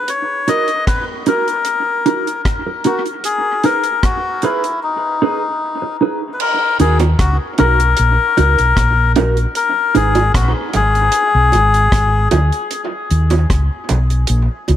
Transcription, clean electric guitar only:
0.48 D#4 F#4 A#4
1.27 D#4 F#4 A#4
2.06 D#4 F#4 A#4
2.67 muted clean electric guitar stroke
2.85 D#4 F#4 A#4
3.64 D#4 G#4 B4
4.43 D#4 G#4 B4
5.22 D#4 G#4 B4
5.82 muted clean electric guitar stroke
6.01 D#4 G#4 B4
6.80 D#4 F#4 A#4
7.59 D#4 F#4 A#4
8.37 D#4 F#4 A#4
9.16 D#4 F#4 A#4
9.95 D#4 G#4 B4

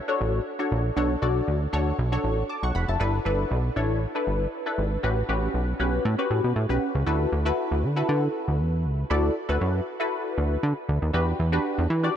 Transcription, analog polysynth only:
0.08 D4 F#4 A4 C#5
0.59 D4 F#4 A4 C#5
0.96 D4 F#4 A4 C#5
1.22 D4 F#4 A4 D5
1.73 D4 F#4 A4 C#5
2.12 D4 F#4 A4 C#5
2.49 A5 D6
2.63 F#5 C#6
2.75 F#5 B5
2.88 E5 A5
3.00 D4 E4 A4 B4
3.25 D4 E4 A4 B4
3.76 D4 E4 A4 C#5
4.15 D4 E4 A4 B4
4.66 D4 E4 A4 B4
5.03 C#4 F#4 G4 B4
5.29 C#4 F#4 G4 B4
5.79 C#4 F#4 G4 B4
6.18 C#4 F#4 G4 B4
6.69 C#4 F#4 G4 B4
7.06 E4 F#4 A4 B4
7.45 E4 F#4 A4 B4
7.96 E4 F#4 A4 B4
9.10 E4 F#4 A4 D5
9.49 E4 F#4 A4 B4
10.00 E4 F#4 A4 B4
11.13 D4 F#4 G4 B4
11.52 D4 F#4 G4 B4
12.03 D4 F#4 G4 D5

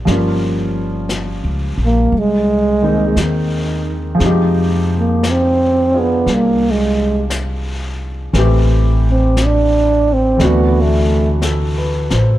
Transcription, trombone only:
1.85 A#3
2.19 G#3
3.21 D#3
4.99 A#3
5.31 C4
6.01 B3
6.35 A#3
6.71 G#3
9.11 C4
9.46 D4
10.13 C4
10.48 B3
10.83 A3

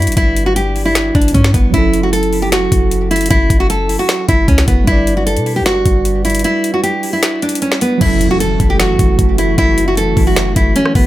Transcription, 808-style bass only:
0.07 G1
0.17 G1
1.15 G1
1.35 G2
1.54 G1
1.74 F#1
2.72 F#1
3.31 F#1
3.50 F#1
4.29 F#1
4.48 C#2
4.68 F#1
4.88 G1
5.36 B2
5.61 G1
5.86 G1
8.01 F#1
8.60 F#1
8.89 G1
8.99 F#1
9.19 F#1
9.58 F#1
10.17 F#1
10.56 F#1
10.95 F#1

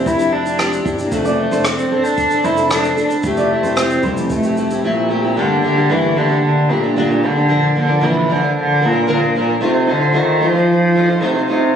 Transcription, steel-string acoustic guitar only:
Already playing: C4 D4 E4 G4
0.17 D4 E4 G4
0.32 C4 D4 E4 G4
0.44 D4 E4 G4
0.58 F3 C4 D4 E4 G4
0.84 C4 D4 E4 G4
0.98 D4 E4 G4
1.11 F3 A3 C4 D4 A4
1.38 A3 C4 D4 A4
1.52 C4 D4 A4
1.65 F3 A3 C4 D4 A4
1.92 A3 C4 D4 A4
2.31 C4 D4 A4
2.45 A3 C4 D4 A4
2.58 C4 D4 A4
2.71 F3 A3 C4 D4 A4
2.97 A3 C4 D4 A4
3.11 C4 D4 A4
3.24 F3 A3 C4 E4 G4
3.51 A3 C4 E4 G4
3.64 C4 E4 G4
3.77 F3 A3 C4 E4 G4
4.04 A3 C4 E4 G4
4.45 C4 E4 G4
4.57 A3 C4 E4 G4
4.70 C4 E4 G4
4.83 F3 A3 C4 E4 G4
5.09 A3 C4 E4 G4
5.23 C4 E4 G4
5.37 G2 D3 A3 A#3 D4 G4
5.62 A3 A#3 D4 G4
5.76 A3 A#3 D4 G4
5.89 G2 D3 A3 A#3 D4 G4
6.15 A3 A#3 D4 G4
6.29 A3 A#3 D4 G4
6.69 A3 A#3 D4 G4
6.83 A3 A#3 D4 G4
6.96 G2 D3 A3 A#3 D4 G4
7.09 A3 A#3 D4 G4
7.22 A3 A#3 D4 G4
7.36 A3 A#3 D4 G4
7.49 A#2 D3 F3 A#3 D4 A#4
7.75 F3 A#3 D4 A#4
7.87 F3 A#3 D4 A#4
8.00 A#2 D3 F3 A#3 D4 A#4
8.27 F3 A#3 D4 A#4
8.41 F3 A#3 D4 A#4
8.80 F3 A#3 D4 A#4
8.93 F3 A#3 D4 A#4
9.07 A#2 D3 F3 A#3 D4 A#4
9.21 F3 A#3 D4 A#4
9.35 F3 A#3 D4 A#4
9.47 F3 A#3 D4 A#4
9.61 A3 D#4 F4 C5
9.87 A3 D#4 F4 C5
10.00 D#4 F4 C5
10.13 A3 D#4 F4 C5
10.40 A3 D#4 F4 C5
10.54 D#4 F4 C5
10.95 A3 D#4 F4 C5
11.08 D#4 F4 C5
11.21 A3 D#4 F4 C5
11.35 D#4 F4 C5
11.48 A3 D#4 F4 C5

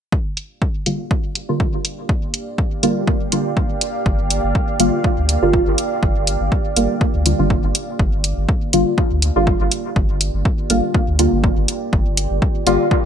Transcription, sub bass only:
4.06 G1
4.44 G1
4.80 G1
5.18 D2
5.42 G1
5.67 G1
6.03 G1
6.41 G1
6.76 G1
7.15 D2
7.39 G1
7.64 G1
7.99 G1
8.38 G1
8.73 G1
9.11 D2
9.36 G1
9.61 G1
9.96 G1
10.34 G1
10.70 G1
11.08 D2
11.33 G1
11.57 G1
11.93 G1
12.31 G1
12.67 G1

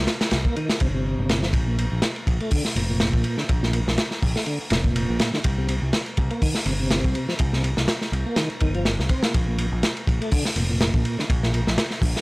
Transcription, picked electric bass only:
0.32 C2
0.81 G1
1.19 G1
1.53 A#1
1.92 A#1
2.27 A#1
2.76 F1
3.14 A#1
3.50 A#1
3.87 A#1
4.23 A#1
4.71 F1
5.09 A#1
5.45 C2
5.82 C2
6.18 C2
6.66 G1
7.04 C2
7.40 C2
7.77 C2
8.12 C2
8.61 G1
8.99 C2
9.35 A#1
9.72 A#1
10.07 A#1
10.56 F1
10.94 A#1
11.30 A#1
11.67 A#1
12.02 A#1

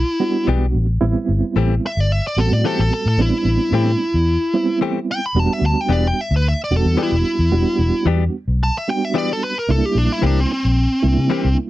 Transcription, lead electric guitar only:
Already playing: E4
1.87 E5
2.00 D5
2.12 E5
2.27 D5
2.38 A4
2.53 D5
2.65 A4
2.81 A4
2.94 A4
3.08 A4
3.22 E4
5.11 G5
5.26 B5
5.39 A5
5.53 E5
5.66 A5
5.81 G5
5.93 D5
6.07 G5
6.21 E5
6.36 B4
6.48 E5
6.64 D5
6.76 A4
7.03 E4
8.63 A5
8.78 E5
8.90 G5
9.05 E5
9.18 D5
9.33 A4
9.44 B4
9.59 A#4
9.71 A4
9.86 G4
9.98 D4
10.12 E4
10.26 D4
10.40 C4
10.52 C4

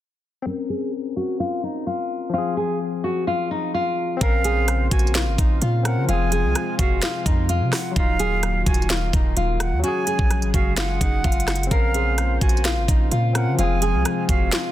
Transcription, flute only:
4.21 F5
4.91 G#5
5.85 F#5
6.09 G#5
6.79 F5
7.73 F#5
7.96 F5
8.66 G#5
9.60 F#5
9.84 G#5
10.54 F5
10.77 F#5
11.71 F5
12.41 G#5
13.35 F#5
13.59 G#5
14.29 F5

